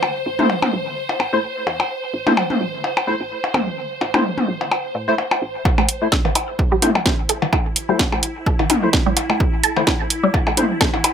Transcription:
Already playing: synth drone C5
0.03 percussion blips
0.26 fm bass A1
0.39 synth stab A3 E4 C5, mid tom
0.50 percussion blips
0.62 mid tom, percussion blips
0.73 fm bass A1
1.09 percussion blips
1.20 fm bass A1, percussion blips
1.33 fm bass A1, synth stab A3 E4 C5
1.67 fm bass E2, percussion blips
1.80 percussion blips
2.14 fm bass A1
2.27 synth stab A3 E4 C5, mid tom, percussion blips
2.37 percussion blips
2.50 mid tom
2.61 fm bass A1
2.84 percussion blips
2.97 percussion blips
3.07 fm bass A1, synth stab A3 E4 C5
3.20 fm bass A1
3.44 percussion blips
3.54 fm bass E2, mid tom, percussion blips
4.01 fm bass A1, percussion blips
4.14 synth stab A3 E4 C5, mid tom, percussion blips
4.38 mid tom
4.48 fm bass A1
4.61 percussion blips
4.71 percussion blips
4.95 fm bass A2
5.08 fm bass A1, synth stab A3 E4 C5
5.18 percussion blips
5.31 percussion blips
5.42 fm bass A1
5.65 synth drone E4, kick, percussion blips
5.78 synth arpeggio sound A3, percussion blips
5.89 open hi-hat
6.02 synth stab A3 E4 C5
6.12 synth arpeggio sound A4, kick, snare
6.25 synth arpeggio sound E3, percussion blips
6.35 synth arpeggio sound E4, open hi-hat, percussion blips
6.59 kick
6.72 synth arpeggio sound G3
6.82 synth stab A3 E4 C5, mid tom, open hi-hat, percussion blips
6.95 synth arpeggio sound A3, percussion blips
7.06 kick, snare
7.29 synth arpeggio sound A4, open hi-hat
7.42 synth arpeggio sound E3, percussion blips
7.53 synth arpeggio sound E4, kick, percussion blips
7.76 open hi-hat
7.89 synth arpeggio sound G3, synth stab A3 E4 C5
7.99 kick, snare, percussion blips
8.12 synth arpeggio sound A3, percussion blips
8.23 open hi-hat
8.46 synth arpeggio sound A4, kick
8.59 synth arpeggio sound E3, percussion blips
8.70 synth arpeggio sound E4, mid tom, open hi-hat, percussion blips
8.83 synth stab A3 E4 C5
8.93 kick, snare
9.06 synth arpeggio sound G3
9.17 open hi-hat, percussion blips
9.30 synth arpeggio sound A3, percussion blips
9.40 kick
9.63 synth arpeggio sound A4, open hi-hat
9.77 synth arpeggio sound E3, synth stab A3 E4 C5, percussion blips
9.87 synth arpeggio sound E4, kick, snare, percussion blips
10.10 open hi-hat
10.23 synth arpeggio sound G3
10.34 kick, percussion blips
10.47 synth arpeggio sound A3, percussion blips
10.57 synth stab A3 E4 C5, mid tom, open hi-hat
10.81 synth arpeggio sound A4, kick, snare
10.94 synth arpeggio sound E3, percussion blips
11.04 synth arpeggio sound E4, open hi-hat, percussion blips

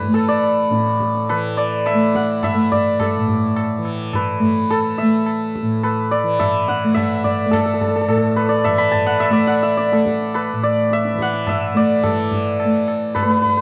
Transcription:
Already playing: tanpura A2 E3 A3, santur A4 B4 D5 E5
0.01 tabla ge
0.08 tanpura A3
0.14 santur A4, tabla na
0.28 santur D5
0.43 tabla na
0.70 tanpura A2, tabla te
0.86 tabla te
1.00 tabla ke
1.15 tabla te
1.29 tanpura E3, santur B4, tabla na
1.57 santur D5, tabla na
1.86 santur E5, tabla na
1.94 tanpura A3
2.15 santur F#5, tabla ke
2.43 santur E5, tabla na, tabla ge
2.54 tanpura A3
2.72 santur D5, tabla ge
3.00 santur A4, tabla na, tabla ge
3.17 tanpura A2
3.28 tabla ge
3.56 tabla na
3.78 tanpura E3
3.85 tabla na
4.13 santur B4, tabla na, tabla ge
4.39 tanpura A3, tabla ge
4.70 santur A4, tabla na
4.98 santur E5, tabla na
5.02 tanpura A3
5.26 tabla na
5.56 tabla ke
5.62 tanpura A2
5.83 santur B4, tabla na
6.11 santur D5, tabla na
6.24 tanpura E3
6.39 santur E5, tabla na, tabla ge
6.68 santur F#5, tabla te
6.84 tanpura A3
6.94 santur E5, tabla na, tabla ge
7.24 santur D5, tabla ge
7.46 tanpura A3
7.51 santur A4, tabla na, tabla ge
7.58 santur A4
7.66 santur A4
7.74 santur A4
7.81 santur A4, tabla ge
7.88 santur A4
7.96 santur A4
8.01 santur A4
8.07 tanpura A2, santur A4, tabla na
8.18 santur A4
8.36 santur B4, tabla na
8.49 santur D5
8.64 tanpura E3, santur E5, tabla na, tabla ge
8.78 santur B5
8.92 santur A5, tabla ge
9.06 santur F#5
9.20 santur E5, tabla na
9.30 tanpura A3, santur D5 E5
9.47 santur F#5, tabla na
9.63 santur E5
9.77 santur D5, tabla te
9.92 tanpura A3, santur A4, tabla te
10.06 tabla ke
10.20 tabla te
10.34 santur B4, tabla na
10.53 tanpura A2
10.63 santur D5, tabla na
10.91 santur E5, tabla te
11.05 tabla te
11.14 tanpura E3
11.19 santur F#5, tabla ke
11.33 tabla te
11.47 santur E5, tabla na, tabla ge
11.74 tanpura A3, santur D5, tabla te
12.04 tanpura E3, santur A4, tabla na, tabla ge
12.32 tabla ge
12.60 tabla na
12.65 tanpura A3
12.88 tabla na
13.15 santur B4, tabla na, tabla ge
13.23 tanpura A3, santur B4
13.30 santur B4
13.37 santur B4
13.42 santur B4, tabla ge
13.49 santur B4
13.57 santur B4

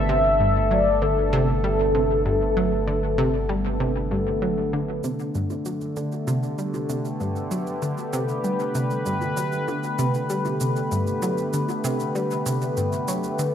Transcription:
Already playing: sub bass G1, analog synth pad D3 A3 B3 A4 E5
0.09 synth arpeggio sound C3, soft synth lead E5
0.40 synth arpeggio sound G2
0.71 synth arpeggio sound F#3, soft synth lead D5
1.02 synth arpeggio sound D3, soft synth lead A4
1.33 synth arpeggio sound C3
1.64 synth arpeggio sound G3
1.95 synth arpeggio sound C3
2.26 synth arpeggio sound G2
2.57 synth arpeggio sound F#3
2.87 synth arpeggio sound D3
3.18 synth arpeggio sound C3
3.49 synth arpeggio sound G3
3.80 synth arpeggio sound C3
4.11 synth arpeggio sound G2
4.42 synth arpeggio sound F#3
4.73 synth arpeggio sound D3
5.04 synth arpeggio sound C3, analog synth pad D3, cabasa
5.11 analog synth pad A3
5.19 cabasa
5.35 synth arpeggio sound G2, cabasa
5.47 analog synth pad B3, low bongo, cabasa
5.65 synth arpeggio sound F#3, cabasa
5.77 analog synth pad G4
5.81 cabasa
5.96 synth arpeggio sound D3, cabasa
6.12 cabasa
6.27 synth arpeggio sound C3, low bongo, cabasa
6.43 cabasa
6.58 synth arpeggio sound G3, cabasa
6.67 analog synth pad B4
6.74 low bongo, cabasa
6.89 synth arpeggio sound C3, cabasa
7.05 cabasa
7.20 synth arpeggio sound G2, cabasa
7.36 cabasa
7.51 synth arpeggio sound F#3, cabasa
7.67 cabasa
7.82 synth arpeggio sound D3, cabasa
7.98 cabasa
8.13 synth arpeggio sound C3, cabasa
8.29 cabasa
8.44 synth arpeggio sound G3, cabasa
8.59 cabasa
8.75 synth arpeggio sound C3, cabasa
8.90 cabasa
9.06 synth arpeggio sound G2, cabasa
9.21 low bongo, cabasa
9.37 synth arpeggio sound F#3, cabasa
9.52 cabasa
9.68 synth arpeggio sound D3, low bongo, cabasa
9.83 cabasa
9.99 synth arpeggio sound C3, cabasa
10.14 cabasa
10.30 synth arpeggio sound G3, cabasa
10.45 low bongo, cabasa
10.61 synth arpeggio sound C3, cabasa
10.76 cabasa
10.92 synth arpeggio sound G2, cabasa
11.07 cabasa
11.22 synth arpeggio sound F#3, low bongo, cabasa
11.38 cabasa
11.53 synth arpeggio sound D3, cabasa
11.69 low bongo, cabasa
11.84 synth arpeggio sound C3, cabasa
12.00 cabasa
12.15 synth arpeggio sound G3, cabasa
12.31 cabasa
12.46 synth arpeggio sound C3, cabasa
12.62 cabasa
12.77 synth arpeggio sound G2, cabasa
12.93 cabasa
13.08 synth arpeggio sound F#3, cabasa
13.24 cabasa
13.39 synth arpeggio sound D3, cabasa

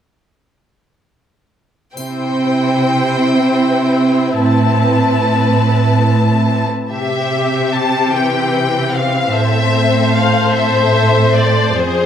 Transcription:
1.96 cello section C3, viola section C4 E4, violin section C5 G5, triangle
4.40 cello section A2, violin section B4 A5
6.91 cello section C3, violin section C4 G4 E5, viola section G4
7.73 violin section A5
8.13 viola section E3, violin section G5
8.94 violin section F5
9.34 cello section A2, violin section A4 E5, viola section C5
10.15 violin section F5
10.54 violin section E5
11.35 violin section D5
11.76 cello section F2, violin section C4 G#4 C5, viola section G#4

